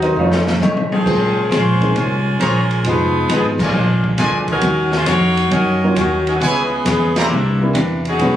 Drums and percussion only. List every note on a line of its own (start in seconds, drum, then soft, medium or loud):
0.02 ride soft
0.32 snare medium
0.47 snare medium
0.62 hi-hat pedal medium
0.62 high tom medium
0.77 high tom medium
0.92 high tom loud
1.06 kick medium
1.06 crash medium
1.51 kick soft
1.51 snare soft
1.51 hi-hat pedal medium
1.51 ride medium
1.81 kick medium
1.81 ride soft
1.95 kick soft
1.95 ride medium
2.40 kick soft
2.40 hi-hat pedal medium
2.40 ride medium
2.71 ride soft
2.84 kick soft
2.84 ride medium
3.29 kick soft
3.29 hi-hat pedal medium
3.29 ride medium
3.59 kick medium
3.59 crash medium
4.04 kick medium
4.18 kick soft
4.18 hi-hat pedal medium
4.18 ride medium
4.48 kick soft
4.48 ride soft
4.61 kick soft
4.61 ride medium
4.92 snare medium
5.06 kick soft
5.06 hi-hat pedal medium
5.06 ride medium
5.37 ride soft
5.51 kick soft
5.51 ride medium
5.96 kick soft
5.96 hi-hat pedal medium
5.96 ride medium
6.27 ride soft
6.41 kick soft
6.41 ride medium
6.86 kick soft
6.86 snare soft
6.86 hi-hat pedal medium
6.86 ride medium
7.16 snare medium
7.16 ride medium
7.75 kick soft
7.75 hi-hat pedal medium
7.75 ride medium
8.05 ride soft
8.19 kick soft
8.19 ride medium